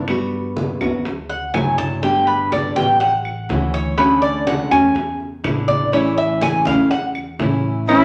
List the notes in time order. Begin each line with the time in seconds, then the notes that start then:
Already playing: G2
0.08 G3 B3 F#4, high bongo, high conga, claves
0.32 high conga
0.57 high bongo, high conga
0.81 D2 B3 F#4, high bongo, high conga, low conga, claves
1.05 muted nylon-string guitar stroke, high bongo, high conga
1.30 F#5, high bongo, high conga
1.54 G1 F#3 A3 E4 F#4 G#5, high bongo, low bongo, high conga, claves
1.78 A5, high bongo, high conga
2.02 D3 G3 B3 G4 G5, high bongo, high conga
2.27 B4, high bongo, high conga
2.52 D5, high bongo, high conga, claves
2.76 A1 G3 B3 G4 G5, high conga
3.00 F#5, muted nylon-string guitar stroke, high bongo, high conga
3.25 high bongo, high conga, claves
3.49 D2 E3 A3 C#4 F#4, high bongo, low bongo, high conga
3.74 C#5
3.97 D3 A3 C#4 F#4 B4, high bongo, claves
4.22 D5, high conga
4.47 F#5, high bongo, high conga
4.71 E2 A3 C#4 F#4 G#5, high bongo, high conga, low conga, claves
4.95 muted nylon-string guitar stroke, high bongo, high conga
5.20 high bongo, high conga
5.44 A1 D3 G#3 B3 E4, high bongo, low bongo, high conga, claves
5.68 D5, high bongo, high conga
5.92 E3 A3 C#4 E4 C#5, high bongo, high conga
6.17 E5, high bongo, high conga
6.41 G#5, high bongo, high conga, claves
6.65 E2 A3 C#4 E4 F5, high bongo, high conga
6.90 F#5, muted nylon-string guitar stroke, high bongo, high conga
7.15 high bongo, high conga, claves
7.39 A1 E3 A3 C#4 E4, high bongo, low bongo, high conga
7.87 E3 A3 C#4 E4, cowbell, high conga, claves